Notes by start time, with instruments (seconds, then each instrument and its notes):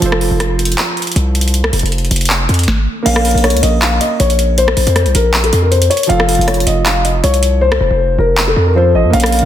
0.00 808-style bass F1, felt piano F3 F4 A4, closed hi-hat
0.06 felt piano C5
0.12 cross-stick
0.21 open hi-hat
0.31 808-style bass F1
0.40 cross-stick, closed hi-hat
0.59 closed hi-hat
0.65 closed hi-hat
0.72 closed hi-hat
0.78 clap, closed hi-hat
0.97 closed hi-hat
1.02 closed hi-hat
1.07 closed hi-hat
1.12 closed hi-hat
1.16 808-style bass C2, closed hi-hat
1.35 closed hi-hat
1.41 closed hi-hat
1.48 closed hi-hat
1.54 closed hi-hat
1.64 cross-stick
1.73 808-style bass F1, closed hi-hat, open hi-hat
1.79 808-style bass F1, closed hi-hat
1.86 closed hi-hat
1.92 closed hi-hat
1.98 closed hi-hat
2.05 closed hi-hat
2.11 808-style bass F1, closed hi-hat
2.16 closed hi-hat
2.21 closed hi-hat
2.25 closed hi-hat
2.30 clap
2.49 808-style bass F2, closed hi-hat
2.54 closed hi-hat
2.59 closed hi-hat
2.63 closed hi-hat
2.68 kick, snare
3.03 808-style bass A#1, felt piano A#3 A#4, grand piano F5, closed hi-hat, crash
3.07 felt piano C#4 F5
3.16 cross-stick
3.25 closed hi-hat, open hi-hat
3.31 808-style bass A#1, closed hi-hat
3.38 closed hi-hat
3.44 grand piano C#5, cross-stick, closed hi-hat
3.50 808-style bass C#2, closed hi-hat
3.57 closed hi-hat
3.62 808-style bass A#1, grand piano D#5, closed hi-hat
3.82 grand piano F5, clap, closed hi-hat
4.01 grand piano D#5, closed hi-hat
4.20 808-style bass A#1, grand piano C#5, closed hi-hat
4.30 closed hi-hat
4.39 closed hi-hat
4.58 grand piano C5, closed hi-hat
4.68 cross-stick
4.77 808-style bass A#1, closed hi-hat, open hi-hat
4.87 808-style bass F2, closed hi-hat
4.96 cross-stick, closed hi-hat
5.06 808-style bass C2, closed hi-hat
5.15 808-style bass A#1, grand piano A#4, closed hi-hat
5.34 clap, closed hi-hat
5.43 grand piano A4, closed hi-hat
5.53 808-style bass F2, closed hi-hat
5.62 grand piano A#4
5.71 grand piano C5, closed hi-hat
5.82 closed hi-hat
5.90 grand piano C#5, closed hi-hat
5.97 closed hi-hat
6.03 felt piano F3, closed hi-hat
6.09 808-style bass F1, felt piano F4 A4, grand piano F5, closed hi-hat
6.20 cross-stick
6.29 closed hi-hat, open hi-hat
6.35 808-style bass F1, closed hi-hat
6.41 closed hi-hat
6.47 grand piano C#5, cross-stick, closed hi-hat
6.54 closed hi-hat
6.60 closed hi-hat
6.67 808-style bass F1, grand piano D#5, closed hi-hat
6.86 grand piano F5, clap, closed hi-hat
7.05 grand piano D#5, closed hi-hat
7.24 808-style bass C2, grand piano C#5, closed hi-hat
7.34 closed hi-hat
7.43 closed hi-hat
7.61 grand piano C5
7.72 cross-stick
7.81 808-style bass F1
7.91 808-style bass F1
8.18 808-style bass F1, grand piano A#4
8.38 clap
8.47 grand piano A4
8.56 808-style bass F2
8.67 grand piano A#4
8.74 felt piano F3 F4 A4 C5, grand piano C5
8.94 808-style bass A1, grand piano D#5
9.04 808-style bass F2
9.10 808-style bass A#1, felt piano A#3 A#4, grand piano F5, closed hi-hat
9.14 felt piano C#4 F5
9.20 cross-stick, closed hi-hat
9.26 closed hi-hat
9.32 closed hi-hat, open hi-hat
9.39 closed hi-hat